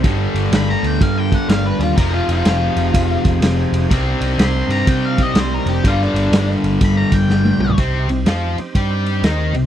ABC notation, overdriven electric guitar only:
X:1
M:4/4
L:1/8
Q:"Swing" 1/4=124
K:Cm
V:1 name="Overdriven electric guitar" clef=bass
[G,,D,G,]8 | [F,,C,F,]8 | [C,G,C]8 | [G,,D,G,]8 |
[C,C] C, [F,F] z [G,G]2 [E,E] C, |]